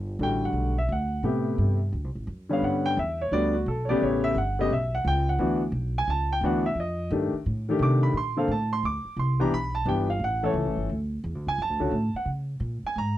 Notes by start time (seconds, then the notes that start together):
Already playing: G1
0.19 A1 D3 G3 A3 F#4 G5
0.45 F#5
0.53 B1
0.78 E5
0.89 D2 F#5
1.23 A2 C3 A3 B3 G4
1.58 G2
1.92 D2
2.04 C2
2.15 A1
2.27 F#2
2.49 D3 G3 B3 C#4 F5
2.62 G2 F#5
2.86 G5
2.97 E2 E5
3.21 C#5
3.31 D2 D3 G3 B3 F#4 D5
3.54 F#4
3.66 B1 A4
3.85 C#5 D5
3.89 C#3 A3 B3 G4
4.01 A1 C#5
4.24 E5
4.35 G1 F#5
4.59 C#3 A3 B3 G4 D#5
4.70 B1 E5
4.95 F#5
5.05 C#2 G5
5.29 F#5
5.38 D2 E3 B3 D4 F#4
5.72 B1
5.98 G#5
6.08 C#2 A5
6.33 G5
6.41 D2 E3 B3 D4 F#4
6.46 F#5
6.66 E5
6.75 F2
6.80 D#5
7.10 G2 D#3 A3 D4 G4
7.33 muted upright bass stroke
7.46 A2
7.69 D#3 A3 D4 G4
7.79 C3 D6
8.03 B5
8.14 A#2 C6
8.37 D3 A#3 C4 A4 F5
8.48 A2 A5
8.73 C6
8.83 D2 D6
9.05 muted upright bass stroke
9.16 C2 C6
9.40 E3 B3 D4 G4 A#5
9.51 B1 B5
9.75 A5
9.85 G1 E3 B3 D4 G4 G5
10.10 F5
10.19 A1
10.24 F#5
10.43 E3 A3 C#4 A4 C#5
10.54 C#2
10.66 A1
10.76 G1
10.89 D2
11.24 E2
11.35 D2
11.47 C#2 G#5
11.58 F#2 A5
11.69 D2
11.80 C#2 D3 A3 C#4 F#4
11.91 A2
12.14 F#5, muted upright bass stroke
12.25 C#3
12.60 A#2
12.83 G#5, muted upright bass stroke
12.96 G#2 A#5